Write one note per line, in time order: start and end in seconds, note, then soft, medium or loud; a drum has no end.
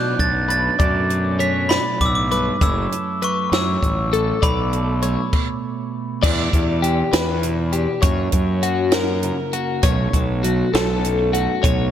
0.00 0.14 B2 medium
0.00 0.19 B2 medium
0.00 1.40 F#3 medium
0.00 0.80 A3 medium
0.00 0.50 D4 medium
0.00 0.19 A4 medium
0.00 0.48 D5 medium
0.00 0.21 F#6 medium
0.19 0.68 B1 medium
0.19 0.79 F#2 medium
0.19 0.81 A4 medium
0.19 0.48 A6 medium
0.19 kick medium
0.19 closed hi-hat soft
0.49 0.77 D4 medium
0.49 0.78 B4 medium
0.49 1.06 A6 medium
0.49 closed hi-hat soft
0.79 1.77 F#2 medium
0.79 1.70 B2 medium
0.79 1.41 A3 soft
0.79 2.58 D4 medium
0.79 1.09 A4 medium
0.79 1.39 D5 medium
0.79 kick loud
0.79 closed hi-hat medium
1.10 1.24 F#4 medium
1.10 closed hi-hat soft
1.24 2.61 A4 soft
1.39 2.65 F#3 medium
1.39 2.61 A3 soft
1.39 1.70 C#5 medium
1.39 1.68 B6 medium
1.39 closed hi-hat soft
1.69 2.01 B2 medium
1.69 2.30 D5 medium
1.69 2.01 B5 medium
1.69 snare medium
1.69 closed hi-hat medium
2.00 2.49 B1 medium
2.00 2.30 A2 medium
2.00 2.07 D6 medium
2.00 kick medium
2.00 closed hi-hat soft
2.06 2.14 E6 medium
2.15 2.30 D6 medium
2.31 2.61 G2 medium
2.31 2.62 B4 medium
2.31 2.62 D6 medium
2.31 closed hi-hat soft
2.61 2.86 F#1 medium
2.61 3.50 F#2 medium
2.61 3.22 A3 medium
2.61 4.39 E4 medium
2.61 2.92 A4 medium
2.61 3.22 C#5 medium
2.61 3.18 E6 medium
2.61 kick loud
2.61 closed hi-hat medium
2.92 4.39 A4 medium
2.92 closed hi-hat medium
3.22 4.39 F#3 medium
3.22 4.42 A3 soft
3.22 3.52 B4 medium
3.22 3.54 C#6 medium
3.22 closed hi-hat soft
3.52 3.82 F#2 medium
3.52 3.76 F#2 medium
3.52 4.12 C#5 medium
3.52 4.39 E6 medium
3.52 snare loud
3.52 closed hi-hat medium
3.82 4.31 A1 medium
3.82 4.12 G2 medium
3.82 kick medium
3.82 closed hi-hat medium
4.12 4.42 A2 medium
4.12 4.43 A4 medium
4.12 closed hi-hat medium
4.42 5.15 B1 medium
4.42 7.13 B2 medium
4.42 5.03 A3 medium
4.42 5.30 D4 medium
4.42 4.72 A4 medium
4.42 5.02 D5 medium
4.42 5.89 B5 medium
4.42 kick loud
4.42 closed hi-hat medium
4.73 5.29 A4 medium
4.73 closed hi-hat medium
5.02 5.29 F#3 medium
5.02 6.83 A3 medium
5.02 5.33 C#5 medium
5.02 closed hi-hat medium
5.33 kick medium
5.33 crash medium
6.23 6.48 E2 loud
6.23 8.63 E3 medium
6.23 6.82 D4 medium
6.23 6.83 D5 loud
6.23 kick loud
6.23 crash loud
6.53 7.02 E2 medium
6.53 7.13 G4 medium
6.53 kick medium
6.53 closed hi-hat medium
6.82 8.00 B3 medium
6.82 7.72 D4 soft
6.82 7.13 G4 medium
6.82 closed hi-hat medium
7.13 7.86 E2 loud
7.13 7.44 F#4 medium
7.13 7.73 B4 medium
7.13 snare loud
7.13 closed hi-hat loud
7.43 8.04 B2 medium
7.43 8.33 F#4 medium
7.43 closed hi-hat medium
7.73 8.00 D4 medium
7.73 8.03 G4 medium
7.73 closed hi-hat medium
8.02 8.27 F#2 medium
8.02 9.83 F#2 medium
8.02 8.63 A#3 medium
8.02 8.63 C#5 medium
8.02 kick loud
8.02 closed hi-hat loud
8.32 9.30 F#2 medium
8.32 9.23 A#4 medium
8.32 kick medium
8.32 closed hi-hat medium
8.63 10.44 F#3 medium
8.63 9.54 A#3 medium
8.63 8.93 F#4 medium
8.63 closed hi-hat medium
8.91 10.47 E4 soft
8.91 9.53 A#4 medium
8.91 snare loud
8.91 closed hi-hat loud
9.23 9.80 C#3 medium
9.23 9.80 A#4 medium
9.23 closed hi-hat medium
9.53 9.81 A#3 medium
9.53 9.83 F#4 medium
9.53 closed hi-hat medium
9.83 10.08 B1 loud
9.83 11.04 B2 medium
9.83 10.44 A3 medium
9.83 10.43 C#5 medium
9.83 kick loud
9.83 closed hi-hat loud
10.13 10.62 B1 medium
10.13 11.04 A4 medium
10.13 kick medium
10.13 closed hi-hat medium
10.43 11.91 F#3 medium
10.43 11.33 A3 soft
10.43 10.73 F#4 medium
10.43 closed hi-hat medium
10.74 11.46 B1 loud
10.74 11.91 C#4 medium
10.74 11.33 A4 medium
10.74 snare loud
10.74 closed hi-hat medium
11.03 11.63 F#2 medium
11.03 11.18 F#4 soft
11.03 closed hi-hat medium
11.18 11.63 A4 soft
11.33 11.63 A3 medium
11.33 11.63 F#4 medium
11.33 closed hi-hat medium
11.63 11.88 B1 medium
11.63 11.91 B2 medium
11.63 11.91 A3 medium
11.63 11.91 C#5 medium
11.63 kick loud
11.63 closed hi-hat loud